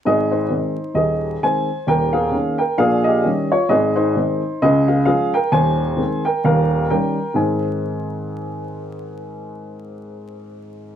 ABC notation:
X:1
M:4/4
L:1/8
Q:"Swing" 1/4=131
K:Ab
V:1 name="Upright piano"
[Ae] [Ec]3 [Ae]2 [ca]2 | [Bg] [Af]2 [Bg] [Af] [Ge]2 [Fd] | [Ae] [Ec]3 [Ae] [Af] [Af] [Bg] | [ca]3 [Bg] [Bf]2 [Bg]2 |
[A,,E,CEAca]8- | [A,,E,CEAca]8 |]
V:2 name="Upright piano" clef=bass
[A,,,A,,]2 [E,A,C]2 [E,,,E,,]2 [E,A,C]2 | [E,,,E,,]2 [E,B,D]2 [B,,,B,,]2 [E,G,D]2 | [A,,,A,,]2 [E,A,C]2 [D,,D,]2 [F,A,D]2 | [E,,,E,,]2 [E,A,C]2 [E,,,E,,]2 [E,G,D]2 |
z8 | z8 |]